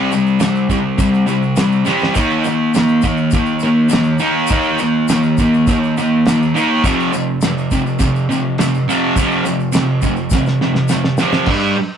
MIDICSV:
0, 0, Header, 1, 4, 480
1, 0, Start_track
1, 0, Tempo, 581959
1, 1788, Time_signature, 4, 2, 24, 8
1, 9875, End_track
2, 0, Start_track
2, 0, Title_t, "Distorted electric guitar"
2, 0, Program_c, 0, 30
2, 0, Note_on_c, 0, 60, 114
2, 83, Note_off_c, 0, 60, 0
2, 101, Note_on_c, 0, 48, 76
2, 104, Note_on_c, 0, 55, 93
2, 317, Note_off_c, 0, 48, 0
2, 319, Note_off_c, 0, 55, 0
2, 330, Note_on_c, 0, 55, 88
2, 331, Note_on_c, 0, 48, 76
2, 552, Note_off_c, 0, 55, 0
2, 553, Note_off_c, 0, 48, 0
2, 574, Note_on_c, 0, 48, 87
2, 580, Note_on_c, 0, 55, 86
2, 795, Note_off_c, 0, 48, 0
2, 798, Note_off_c, 0, 55, 0
2, 807, Note_on_c, 0, 48, 80
2, 811, Note_on_c, 0, 55, 89
2, 1032, Note_off_c, 0, 48, 0
2, 1034, Note_off_c, 0, 55, 0
2, 1042, Note_on_c, 0, 48, 78
2, 1046, Note_on_c, 0, 55, 86
2, 1270, Note_off_c, 0, 48, 0
2, 1272, Note_off_c, 0, 55, 0
2, 1290, Note_on_c, 0, 48, 85
2, 1293, Note_on_c, 0, 55, 87
2, 1515, Note_off_c, 0, 48, 0
2, 1516, Note_off_c, 0, 55, 0
2, 1524, Note_on_c, 0, 48, 95
2, 1534, Note_on_c, 0, 55, 99
2, 1536, Note_on_c, 0, 60, 100
2, 1762, Note_off_c, 0, 48, 0
2, 1767, Note_off_c, 0, 55, 0
2, 1768, Note_off_c, 0, 60, 0
2, 1771, Note_on_c, 0, 51, 95
2, 1778, Note_on_c, 0, 58, 105
2, 1787, Note_on_c, 0, 63, 99
2, 2006, Note_off_c, 0, 51, 0
2, 2010, Note_off_c, 0, 58, 0
2, 2014, Note_off_c, 0, 63, 0
2, 2025, Note_on_c, 0, 51, 76
2, 2032, Note_on_c, 0, 58, 86
2, 2244, Note_off_c, 0, 51, 0
2, 2248, Note_off_c, 0, 58, 0
2, 2267, Note_on_c, 0, 51, 78
2, 2276, Note_on_c, 0, 58, 83
2, 2486, Note_off_c, 0, 51, 0
2, 2490, Note_off_c, 0, 58, 0
2, 2502, Note_on_c, 0, 51, 80
2, 2508, Note_on_c, 0, 58, 84
2, 2724, Note_off_c, 0, 51, 0
2, 2727, Note_off_c, 0, 58, 0
2, 2748, Note_on_c, 0, 51, 74
2, 2753, Note_on_c, 0, 58, 96
2, 2967, Note_off_c, 0, 51, 0
2, 2970, Note_off_c, 0, 58, 0
2, 2995, Note_on_c, 0, 58, 77
2, 2997, Note_on_c, 0, 51, 74
2, 3206, Note_off_c, 0, 51, 0
2, 3209, Note_off_c, 0, 58, 0
2, 3216, Note_on_c, 0, 51, 81
2, 3219, Note_on_c, 0, 58, 95
2, 3442, Note_off_c, 0, 51, 0
2, 3443, Note_off_c, 0, 58, 0
2, 3462, Note_on_c, 0, 51, 101
2, 3467, Note_on_c, 0, 63, 107
2, 3468, Note_on_c, 0, 58, 94
2, 3695, Note_off_c, 0, 51, 0
2, 3698, Note_off_c, 0, 58, 0
2, 3698, Note_off_c, 0, 63, 0
2, 3708, Note_on_c, 0, 51, 103
2, 3718, Note_on_c, 0, 58, 92
2, 3718, Note_on_c, 0, 63, 112
2, 3939, Note_off_c, 0, 51, 0
2, 3944, Note_off_c, 0, 58, 0
2, 3944, Note_off_c, 0, 63, 0
2, 3959, Note_on_c, 0, 51, 78
2, 3962, Note_on_c, 0, 58, 92
2, 4175, Note_off_c, 0, 51, 0
2, 4176, Note_off_c, 0, 58, 0
2, 4202, Note_on_c, 0, 51, 83
2, 4203, Note_on_c, 0, 58, 88
2, 4416, Note_off_c, 0, 51, 0
2, 4417, Note_off_c, 0, 58, 0
2, 4443, Note_on_c, 0, 51, 84
2, 4448, Note_on_c, 0, 58, 90
2, 4657, Note_off_c, 0, 51, 0
2, 4659, Note_off_c, 0, 58, 0
2, 4684, Note_on_c, 0, 51, 88
2, 4689, Note_on_c, 0, 58, 86
2, 4898, Note_off_c, 0, 51, 0
2, 4900, Note_off_c, 0, 58, 0
2, 4932, Note_on_c, 0, 51, 75
2, 4932, Note_on_c, 0, 58, 90
2, 5142, Note_off_c, 0, 51, 0
2, 5142, Note_off_c, 0, 58, 0
2, 5168, Note_on_c, 0, 58, 94
2, 5169, Note_on_c, 0, 51, 85
2, 5380, Note_off_c, 0, 51, 0
2, 5380, Note_off_c, 0, 58, 0
2, 5398, Note_on_c, 0, 51, 105
2, 5410, Note_on_c, 0, 58, 111
2, 5411, Note_on_c, 0, 63, 109
2, 5625, Note_off_c, 0, 51, 0
2, 5630, Note_off_c, 0, 58, 0
2, 5631, Note_off_c, 0, 63, 0
2, 5638, Note_on_c, 0, 41, 101
2, 5645, Note_on_c, 0, 48, 94
2, 5647, Note_on_c, 0, 53, 111
2, 5864, Note_off_c, 0, 41, 0
2, 5868, Note_off_c, 0, 48, 0
2, 5869, Note_off_c, 0, 53, 0
2, 5877, Note_on_c, 0, 41, 74
2, 5879, Note_on_c, 0, 48, 85
2, 6094, Note_off_c, 0, 41, 0
2, 6095, Note_off_c, 0, 48, 0
2, 6128, Note_on_c, 0, 41, 82
2, 6132, Note_on_c, 0, 48, 91
2, 6339, Note_off_c, 0, 41, 0
2, 6341, Note_off_c, 0, 48, 0
2, 6367, Note_on_c, 0, 41, 85
2, 6367, Note_on_c, 0, 48, 95
2, 6579, Note_off_c, 0, 41, 0
2, 6579, Note_off_c, 0, 48, 0
2, 6594, Note_on_c, 0, 41, 80
2, 6598, Note_on_c, 0, 48, 98
2, 6812, Note_off_c, 0, 41, 0
2, 6814, Note_off_c, 0, 48, 0
2, 6839, Note_on_c, 0, 41, 78
2, 6843, Note_on_c, 0, 48, 83
2, 7054, Note_off_c, 0, 41, 0
2, 7056, Note_off_c, 0, 48, 0
2, 7084, Note_on_c, 0, 41, 87
2, 7084, Note_on_c, 0, 48, 85
2, 7296, Note_off_c, 0, 41, 0
2, 7296, Note_off_c, 0, 48, 0
2, 7324, Note_on_c, 0, 41, 90
2, 7331, Note_on_c, 0, 53, 114
2, 7333, Note_on_c, 0, 48, 104
2, 7545, Note_off_c, 0, 41, 0
2, 7548, Note_off_c, 0, 53, 0
2, 7549, Note_off_c, 0, 48, 0
2, 7563, Note_on_c, 0, 41, 101
2, 7573, Note_on_c, 0, 48, 98
2, 7581, Note_on_c, 0, 53, 108
2, 7784, Note_off_c, 0, 41, 0
2, 7785, Note_off_c, 0, 48, 0
2, 7793, Note_off_c, 0, 53, 0
2, 7793, Note_on_c, 0, 41, 82
2, 7795, Note_on_c, 0, 48, 88
2, 8008, Note_off_c, 0, 41, 0
2, 8010, Note_off_c, 0, 48, 0
2, 8021, Note_on_c, 0, 41, 86
2, 8030, Note_on_c, 0, 48, 93
2, 8242, Note_off_c, 0, 41, 0
2, 8247, Note_off_c, 0, 48, 0
2, 8268, Note_on_c, 0, 41, 77
2, 8271, Note_on_c, 0, 48, 87
2, 8485, Note_off_c, 0, 41, 0
2, 8486, Note_off_c, 0, 48, 0
2, 8513, Note_on_c, 0, 41, 79
2, 8522, Note_on_c, 0, 48, 90
2, 8727, Note_off_c, 0, 41, 0
2, 8731, Note_off_c, 0, 48, 0
2, 8752, Note_on_c, 0, 41, 78
2, 8759, Note_on_c, 0, 48, 83
2, 8965, Note_off_c, 0, 41, 0
2, 8969, Note_off_c, 0, 48, 0
2, 8983, Note_on_c, 0, 41, 80
2, 8989, Note_on_c, 0, 48, 97
2, 9200, Note_off_c, 0, 41, 0
2, 9203, Note_off_c, 0, 48, 0
2, 9233, Note_on_c, 0, 41, 96
2, 9238, Note_on_c, 0, 48, 111
2, 9248, Note_on_c, 0, 53, 99
2, 9454, Note_off_c, 0, 41, 0
2, 9456, Note_off_c, 0, 48, 0
2, 9461, Note_off_c, 0, 53, 0
2, 9464, Note_on_c, 0, 43, 97
2, 9474, Note_on_c, 0, 55, 109
2, 9696, Note_off_c, 0, 43, 0
2, 9700, Note_off_c, 0, 55, 0
2, 9875, End_track
3, 0, Start_track
3, 0, Title_t, "Muted distorted electric guitar strokes"
3, 9709, Note_on_c, 9, 29, 61
3, 9792, Note_off_c, 9, 29, 0
3, 9875, End_track
4, 0, Start_track
4, 0, Title_t, "Drums"
4, 97, Note_on_c, 9, 82, 76
4, 179, Note_off_c, 9, 82, 0
4, 216, Note_on_c, 9, 82, 28
4, 298, Note_off_c, 9, 82, 0
4, 328, Note_on_c, 9, 49, 67
4, 329, Note_on_c, 9, 82, 91
4, 338, Note_on_c, 9, 38, 115
4, 411, Note_off_c, 9, 49, 0
4, 412, Note_off_c, 9, 82, 0
4, 421, Note_off_c, 9, 38, 0
4, 454, Note_on_c, 9, 82, 29
4, 537, Note_off_c, 9, 82, 0
4, 572, Note_on_c, 9, 36, 82
4, 578, Note_on_c, 9, 82, 74
4, 654, Note_off_c, 9, 36, 0
4, 660, Note_off_c, 9, 82, 0
4, 812, Note_on_c, 9, 36, 124
4, 813, Note_on_c, 9, 49, 63
4, 815, Note_on_c, 9, 82, 91
4, 894, Note_off_c, 9, 36, 0
4, 896, Note_off_c, 9, 49, 0
4, 898, Note_off_c, 9, 82, 0
4, 938, Note_on_c, 9, 82, 27
4, 1020, Note_off_c, 9, 82, 0
4, 1051, Note_on_c, 9, 82, 72
4, 1133, Note_off_c, 9, 82, 0
4, 1173, Note_on_c, 9, 82, 24
4, 1256, Note_off_c, 9, 82, 0
4, 1289, Note_on_c, 9, 49, 66
4, 1289, Note_on_c, 9, 82, 92
4, 1299, Note_on_c, 9, 38, 113
4, 1371, Note_off_c, 9, 49, 0
4, 1371, Note_off_c, 9, 82, 0
4, 1381, Note_off_c, 9, 38, 0
4, 1416, Note_on_c, 9, 82, 27
4, 1499, Note_off_c, 9, 82, 0
4, 1530, Note_on_c, 9, 82, 73
4, 1549, Note_on_c, 9, 38, 69
4, 1612, Note_off_c, 9, 82, 0
4, 1631, Note_off_c, 9, 38, 0
4, 1647, Note_on_c, 9, 82, 26
4, 1676, Note_on_c, 9, 38, 97
4, 1730, Note_off_c, 9, 82, 0
4, 1759, Note_off_c, 9, 38, 0
4, 1772, Note_on_c, 9, 82, 89
4, 1780, Note_on_c, 9, 36, 104
4, 1781, Note_on_c, 9, 49, 61
4, 1781, Note_on_c, 9, 55, 80
4, 1855, Note_off_c, 9, 82, 0
4, 1863, Note_off_c, 9, 36, 0
4, 1864, Note_off_c, 9, 49, 0
4, 1864, Note_off_c, 9, 55, 0
4, 1898, Note_on_c, 9, 82, 27
4, 1981, Note_off_c, 9, 82, 0
4, 2015, Note_on_c, 9, 82, 73
4, 2098, Note_off_c, 9, 82, 0
4, 2260, Note_on_c, 9, 82, 85
4, 2270, Note_on_c, 9, 49, 61
4, 2280, Note_on_c, 9, 38, 112
4, 2343, Note_off_c, 9, 82, 0
4, 2352, Note_off_c, 9, 49, 0
4, 2362, Note_off_c, 9, 38, 0
4, 2375, Note_on_c, 9, 82, 28
4, 2457, Note_off_c, 9, 82, 0
4, 2489, Note_on_c, 9, 82, 78
4, 2504, Note_on_c, 9, 36, 87
4, 2572, Note_off_c, 9, 82, 0
4, 2586, Note_off_c, 9, 36, 0
4, 2613, Note_on_c, 9, 82, 27
4, 2696, Note_off_c, 9, 82, 0
4, 2731, Note_on_c, 9, 82, 89
4, 2746, Note_on_c, 9, 36, 119
4, 2747, Note_on_c, 9, 49, 61
4, 2813, Note_off_c, 9, 82, 0
4, 2828, Note_off_c, 9, 36, 0
4, 2829, Note_off_c, 9, 49, 0
4, 2852, Note_on_c, 9, 82, 25
4, 2934, Note_off_c, 9, 82, 0
4, 2966, Note_on_c, 9, 82, 71
4, 3048, Note_off_c, 9, 82, 0
4, 3209, Note_on_c, 9, 82, 97
4, 3233, Note_on_c, 9, 49, 68
4, 3243, Note_on_c, 9, 38, 111
4, 3292, Note_off_c, 9, 82, 0
4, 3315, Note_off_c, 9, 49, 0
4, 3325, Note_off_c, 9, 38, 0
4, 3329, Note_on_c, 9, 82, 27
4, 3411, Note_off_c, 9, 82, 0
4, 3453, Note_on_c, 9, 82, 74
4, 3535, Note_off_c, 9, 82, 0
4, 3686, Note_on_c, 9, 82, 101
4, 3715, Note_on_c, 9, 36, 116
4, 3717, Note_on_c, 9, 49, 62
4, 3769, Note_off_c, 9, 82, 0
4, 3798, Note_off_c, 9, 36, 0
4, 3800, Note_off_c, 9, 49, 0
4, 3817, Note_on_c, 9, 82, 29
4, 3899, Note_off_c, 9, 82, 0
4, 3945, Note_on_c, 9, 82, 80
4, 4028, Note_off_c, 9, 82, 0
4, 4192, Note_on_c, 9, 82, 100
4, 4196, Note_on_c, 9, 49, 65
4, 4205, Note_on_c, 9, 38, 121
4, 4275, Note_off_c, 9, 82, 0
4, 4278, Note_off_c, 9, 49, 0
4, 4288, Note_off_c, 9, 38, 0
4, 4311, Note_on_c, 9, 82, 29
4, 4394, Note_off_c, 9, 82, 0
4, 4433, Note_on_c, 9, 82, 81
4, 4439, Note_on_c, 9, 36, 92
4, 4516, Note_off_c, 9, 82, 0
4, 4521, Note_off_c, 9, 36, 0
4, 4567, Note_on_c, 9, 82, 26
4, 4649, Note_off_c, 9, 82, 0
4, 4678, Note_on_c, 9, 49, 67
4, 4678, Note_on_c, 9, 82, 90
4, 4679, Note_on_c, 9, 36, 117
4, 4761, Note_off_c, 9, 36, 0
4, 4761, Note_off_c, 9, 49, 0
4, 4761, Note_off_c, 9, 82, 0
4, 4810, Note_on_c, 9, 82, 28
4, 4893, Note_off_c, 9, 82, 0
4, 4928, Note_on_c, 9, 82, 69
4, 5011, Note_off_c, 9, 82, 0
4, 5158, Note_on_c, 9, 49, 70
4, 5168, Note_on_c, 9, 38, 123
4, 5175, Note_on_c, 9, 82, 89
4, 5240, Note_off_c, 9, 49, 0
4, 5250, Note_off_c, 9, 38, 0
4, 5257, Note_off_c, 9, 82, 0
4, 5297, Note_on_c, 9, 82, 25
4, 5379, Note_off_c, 9, 82, 0
4, 5415, Note_on_c, 9, 82, 73
4, 5498, Note_off_c, 9, 82, 0
4, 5640, Note_on_c, 9, 36, 119
4, 5640, Note_on_c, 9, 49, 64
4, 5647, Note_on_c, 9, 82, 93
4, 5722, Note_off_c, 9, 49, 0
4, 5723, Note_off_c, 9, 36, 0
4, 5729, Note_off_c, 9, 82, 0
4, 5770, Note_on_c, 9, 82, 27
4, 5853, Note_off_c, 9, 82, 0
4, 5882, Note_on_c, 9, 82, 80
4, 5964, Note_off_c, 9, 82, 0
4, 6115, Note_on_c, 9, 49, 65
4, 6115, Note_on_c, 9, 82, 96
4, 6125, Note_on_c, 9, 38, 112
4, 6197, Note_off_c, 9, 49, 0
4, 6198, Note_off_c, 9, 82, 0
4, 6207, Note_off_c, 9, 38, 0
4, 6250, Note_on_c, 9, 82, 26
4, 6333, Note_off_c, 9, 82, 0
4, 6360, Note_on_c, 9, 82, 80
4, 6362, Note_on_c, 9, 36, 84
4, 6443, Note_off_c, 9, 82, 0
4, 6444, Note_off_c, 9, 36, 0
4, 6486, Note_on_c, 9, 82, 28
4, 6569, Note_off_c, 9, 82, 0
4, 6593, Note_on_c, 9, 82, 91
4, 6598, Note_on_c, 9, 49, 65
4, 6600, Note_on_c, 9, 36, 119
4, 6675, Note_off_c, 9, 82, 0
4, 6681, Note_off_c, 9, 49, 0
4, 6683, Note_off_c, 9, 36, 0
4, 6727, Note_on_c, 9, 82, 29
4, 6809, Note_off_c, 9, 82, 0
4, 6855, Note_on_c, 9, 82, 76
4, 6937, Note_off_c, 9, 82, 0
4, 7076, Note_on_c, 9, 49, 65
4, 7086, Note_on_c, 9, 38, 120
4, 7097, Note_on_c, 9, 82, 98
4, 7159, Note_off_c, 9, 49, 0
4, 7169, Note_off_c, 9, 38, 0
4, 7179, Note_off_c, 9, 82, 0
4, 7210, Note_on_c, 9, 82, 30
4, 7293, Note_off_c, 9, 82, 0
4, 7339, Note_on_c, 9, 82, 83
4, 7421, Note_off_c, 9, 82, 0
4, 7555, Note_on_c, 9, 36, 108
4, 7556, Note_on_c, 9, 49, 60
4, 7560, Note_on_c, 9, 82, 106
4, 7638, Note_off_c, 9, 36, 0
4, 7639, Note_off_c, 9, 49, 0
4, 7642, Note_off_c, 9, 82, 0
4, 7677, Note_on_c, 9, 82, 33
4, 7760, Note_off_c, 9, 82, 0
4, 7797, Note_on_c, 9, 82, 85
4, 7879, Note_off_c, 9, 82, 0
4, 7916, Note_on_c, 9, 82, 32
4, 7998, Note_off_c, 9, 82, 0
4, 8021, Note_on_c, 9, 82, 105
4, 8031, Note_on_c, 9, 49, 62
4, 8041, Note_on_c, 9, 38, 114
4, 8104, Note_off_c, 9, 82, 0
4, 8114, Note_off_c, 9, 49, 0
4, 8124, Note_off_c, 9, 38, 0
4, 8263, Note_on_c, 9, 82, 83
4, 8269, Note_on_c, 9, 36, 88
4, 8345, Note_off_c, 9, 82, 0
4, 8352, Note_off_c, 9, 36, 0
4, 8382, Note_on_c, 9, 82, 29
4, 8465, Note_off_c, 9, 82, 0
4, 8497, Note_on_c, 9, 82, 100
4, 8507, Note_on_c, 9, 36, 123
4, 8512, Note_on_c, 9, 38, 70
4, 8579, Note_off_c, 9, 82, 0
4, 8589, Note_off_c, 9, 36, 0
4, 8595, Note_off_c, 9, 38, 0
4, 8629, Note_on_c, 9, 82, 28
4, 8640, Note_on_c, 9, 38, 60
4, 8712, Note_off_c, 9, 82, 0
4, 8722, Note_off_c, 9, 38, 0
4, 8753, Note_on_c, 9, 38, 78
4, 8836, Note_off_c, 9, 38, 0
4, 8867, Note_on_c, 9, 38, 75
4, 8949, Note_off_c, 9, 38, 0
4, 8976, Note_on_c, 9, 82, 99
4, 8987, Note_on_c, 9, 38, 91
4, 9059, Note_off_c, 9, 82, 0
4, 9070, Note_off_c, 9, 38, 0
4, 9109, Note_on_c, 9, 38, 91
4, 9192, Note_off_c, 9, 38, 0
4, 9217, Note_on_c, 9, 82, 77
4, 9220, Note_on_c, 9, 38, 110
4, 9299, Note_off_c, 9, 82, 0
4, 9302, Note_off_c, 9, 38, 0
4, 9340, Note_on_c, 9, 82, 29
4, 9343, Note_on_c, 9, 38, 101
4, 9423, Note_off_c, 9, 82, 0
4, 9425, Note_off_c, 9, 38, 0
4, 9453, Note_on_c, 9, 49, 61
4, 9453, Note_on_c, 9, 57, 113
4, 9460, Note_on_c, 9, 36, 102
4, 9536, Note_off_c, 9, 49, 0
4, 9536, Note_off_c, 9, 57, 0
4, 9543, Note_off_c, 9, 36, 0
4, 9875, End_track
0, 0, End_of_file